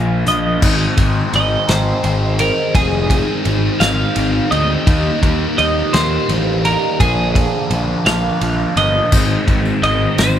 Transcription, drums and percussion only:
0.26 closed hi-hat
0.62 kick, crash
0.97 kick, ride
1.33 ride
1.68 snare, ride
2.04 ride
2.39 ride
2.75 kick, ride
3.10 kick, ride
3.45 ride
3.81 snare, ride
4.16 ride
4.52 ride
4.87 kick, ride
5.23 kick, ride
5.59 ride
5.94 snare, ride
6.29 ride
6.65 ride
7.00 kick, ride
7.35 kick, ride
7.71 ride
8.06 snare, ride
8.41 ride
8.77 ride
9.12 kick, crash, tambourine
9.48 kick, ride
9.65 tambourine
9.83 ride
10.18 snare, ride, tambourine

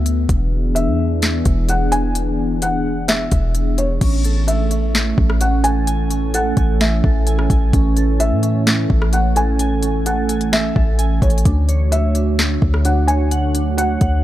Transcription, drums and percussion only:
0.06 closed hi-hat
0.29 kick, closed hi-hat
0.76 closed hi-hat
1.22 snare, closed hi-hat
1.45 kick, closed hi-hat
1.69 closed hi-hat
1.92 closed hi-hat
2.15 closed hi-hat
2.62 closed hi-hat
3.08 snare, closed hi-hat
3.31 kick, closed hi-hat
3.55 closed hi-hat
3.78 closed hi-hat
4.01 kick, closed hi-hat, crash
4.24 closed hi-hat
4.48 closed hi-hat
4.71 closed hi-hat
4.95 snare
5.18 kick
5.30 cross-stick
5.41 closed hi-hat
5.64 closed hi-hat
5.87 closed hi-hat
6.11 closed hi-hat
6.34 closed hi-hat
6.57 kick, closed hi-hat
6.81 snare
7.04 kick
7.27 closed hi-hat
7.39 cross-stick
7.50 kick, closed hi-hat
7.73 kick, closed hi-hat
7.97 closed hi-hat
8.20 closed hi-hat
8.43 closed hi-hat
8.67 snare
8.90 kick
9.02 cross-stick
9.13 closed hi-hat
9.36 closed hi-hat
9.59 closed hi-hat
9.83 closed hi-hat
10.06 closed hi-hat
10.29 closed hi-hat
10.41 closed hi-hat
10.53 snare
10.76 kick
10.99 closed hi-hat
11.22 kick, closed hi-hat
11.30 closed hi-hat
11.38 closed hi-hat
11.45 kick, closed hi-hat
11.69 closed hi-hat
11.92 closed hi-hat
12.15 closed hi-hat
12.39 snare
12.62 kick
12.74 cross-stick
12.85 closed hi-hat
13.08 closed hi-hat
13.31 closed hi-hat
13.55 closed hi-hat
13.78 closed hi-hat
14.01 kick, closed hi-hat

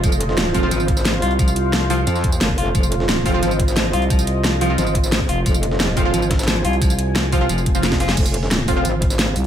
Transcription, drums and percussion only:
0.04 kick, closed hi-hat, tambourine
0.12 tambourine
0.21 closed hi-hat
0.29 snare
0.38 snare, closed hi-hat, tambourine
0.46 snare
0.54 kick, closed hi-hat, open hi-hat
0.71 closed hi-hat, tambourine
0.80 tambourine
0.88 kick, closed hi-hat
0.97 snare, tambourine
1.05 snare, closed hi-hat, tambourine
1.14 closed hi-hat
1.22 closed hi-hat, open hi-hat
1.31 closed hi-hat
1.39 kick, closed hi-hat, tambourine
1.48 tambourine
1.56 closed hi-hat
1.73 snare, closed hi-hat, tambourine
1.90 closed hi-hat, open hi-hat
2.07 closed hi-hat, tambourine
2.15 tambourine
2.24 kick, closed hi-hat
2.32 tambourine
2.41 snare, closed hi-hat, open hi-hat, tambourine
2.49 kick
2.58 closed hi-hat, open hi-hat
2.75 kick, closed hi-hat, tambourine
2.83 tambourine
2.92 closed hi-hat
3.00 snare
3.09 snare, closed hi-hat, tambourine
3.17 snare
3.26 kick, closed hi-hat, open hi-hat
3.43 closed hi-hat, tambourine
3.51 tambourine
3.60 kick, closed hi-hat
3.68 snare, tambourine
3.76 snare, closed hi-hat, tambourine
3.85 closed hi-hat
3.93 closed hi-hat, open hi-hat
4.02 closed hi-hat
4.10 kick, closed hi-hat, tambourine
4.19 tambourine
4.27 closed hi-hat
4.44 snare, closed hi-hat, tambourine
4.61 closed hi-hat, open hi-hat
4.78 closed hi-hat, tambourine
4.87 tambourine
4.95 kick, closed hi-hat
5.04 tambourine
5.12 snare, closed hi-hat, open hi-hat, tambourine
5.21 kick
5.29 closed hi-hat, open hi-hat
5.46 kick, closed hi-hat, tambourine
5.54 tambourine
5.63 closed hi-hat
5.71 snare
5.80 snare, closed hi-hat, tambourine
5.88 snare
5.97 kick, closed hi-hat, open hi-hat
6.14 closed hi-hat, tambourine
6.22 tambourine
6.31 kick, snare, closed hi-hat
6.39 snare, closed hi-hat, tambourine
6.43 snare, closed hi-hat
6.48 snare, closed hi-hat, tambourine
6.56 closed hi-hat
6.65 closed hi-hat, open hi-hat
6.73 closed hi-hat
6.82 kick, closed hi-hat, tambourine
6.90 tambourine
6.99 closed hi-hat
7.16 snare, closed hi-hat, tambourine
7.32 kick, closed hi-hat, open hi-hat, tambourine
7.49 closed hi-hat, tambourine
7.58 tambourine
7.66 kick, closed hi-hat
7.75 tambourine
7.83 snare, closed hi-hat, tambourine
7.92 kick, snare, closed hi-hat
8.00 snare, closed hi-hat, open hi-hat
8.09 snare, closed hi-hat
8.17 kick, closed hi-hat, tambourine, crash
8.26 tambourine
8.34 closed hi-hat
8.43 snare
8.51 snare, closed hi-hat, tambourine
8.60 snare
8.68 kick, closed hi-hat, open hi-hat, tambourine
8.85 closed hi-hat, tambourine
9.02 kick, closed hi-hat
9.10 snare, tambourine
9.19 snare, closed hi-hat, tambourine
9.27 closed hi-hat
9.36 closed hi-hat, open hi-hat, tambourine

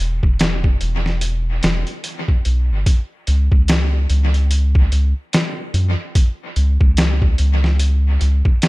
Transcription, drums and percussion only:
0.23 kick
0.39 snare, closed hi-hat
0.64 kick
0.81 closed hi-hat
1.06 snare
1.21 closed hi-hat
1.63 snare, closed hi-hat
1.87 closed hi-hat
2.04 closed hi-hat
2.28 kick
2.45 closed hi-hat
2.86 kick, closed hi-hat
3.27 closed hi-hat
3.52 kick
3.68 snare, closed hi-hat
4.10 closed hi-hat
4.34 closed hi-hat
4.51 closed hi-hat
4.75 kick
4.92 closed hi-hat
5.33 snare, closed hi-hat
5.74 closed hi-hat
6.15 kick, closed hi-hat
6.56 closed hi-hat
6.81 kick
6.97 snare, closed hi-hat
7.22 kick
7.38 closed hi-hat
7.64 snare
7.79 closed hi-hat
8.21 closed hi-hat
8.45 kick
8.62 snare, closed hi-hat

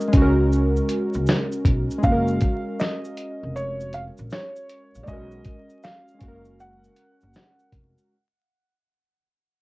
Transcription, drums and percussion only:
0.01 shaker
0.13 kick, closed hi-hat, shaker
0.52 shaker
0.77 shaker
0.89 closed hi-hat, shaker
1.14 shaker
1.27 snare, shaker
1.52 shaker
1.65 kick, closed hi-hat, shaker
1.91 shaker
2.03 kick, shaker
2.28 shaker
2.41 kick, closed hi-hat, shaker
2.80 snare, shaker
3.04 shaker
3.17 closed hi-hat, shaker
3.56 shaker
3.80 shaker
3.93 closed hi-hat, shaker
4.17 shaker
4.30 snare, shaker
4.56 shaker
4.69 closed hi-hat, shaker
4.95 shaker
5.07 kick, shaker
5.31 shaker
5.45 kick, closed hi-hat, shaker
5.70 shaker
5.83 snare, shaker
6.08 shaker
6.21 kick, closed hi-hat, shaker
6.45 shaker
6.60 shaker
6.84 shaker
6.96 closed hi-hat, shaker
7.21 shaker
7.34 snare, shaker
7.59 shaker
7.72 kick, closed hi-hat, shaker
7.98 shaker

